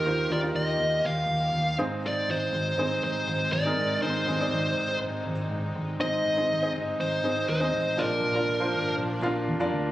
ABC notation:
X:1
M:4/4
L:1/16
Q:1/4=121
K:Ablyd
V:1 name="Lead electric guitar"
B2 d2 e4 f6 z2 | d2 c6 c4 d4 | c8 z8 | e6 z2 c4 c4 |
B8 z8 |]
V:2 name="Grand piano"
[EFGc]2 [EFGB] [EFGB]6- [EFGB] z4 [CEAc]2- | [CEAc]4- [CEAc] z [CEAc]6 z [CEAB]3 | [CEAc]2 [CEAc] [CEAd]6- [CEAd] z6 | [CEAc]3 [CEAc]2 [CEAe]4- [CEAe] [CEAc]3 [CEAe]3 |
[DFBd]3 [DFBd]2 [DFBc]4- [DFBc] [DFBf]3 [DFBd]3 |]
V:3 name="Grand piano" clef=bass
E,4 z8 z2 A,,2- | A,,4 z8 z2 A,,2- | A,,4 z12 | A,,6 z8 z2 |
B,,6 z8 z2 |]
V:4 name="String section"
[E,B,FG]12- [E,B,FG]2 [A,CE]2- | [A,CE]16- | [A,CE]16 | [A,CE]16 |
[F,B,D]16 |]
V:5 name="Fingered electric bass" clef=bass
E,,2 E,,2 E,,2 E,,2 E,,2 E,,2 E,,2 A,,,2- | A,,,2 A,,,2 A,,,2 A,,,2 A,,,2 A,,,2 A,,,2 A,,,2 | A,,,2 A,,,2 A,,,2 z2 A,,,2 A,,,2 A,,,2 A,,,2 | A,,,2 A,,,2 A,,,2 G,,,2 A,,,2 A,,,2 E,,2 =A,,,2 |
B,,,2 B,,,2 B,,,2 A,,,2 B,,,2 B,,,2 F,,2 D,,2 |]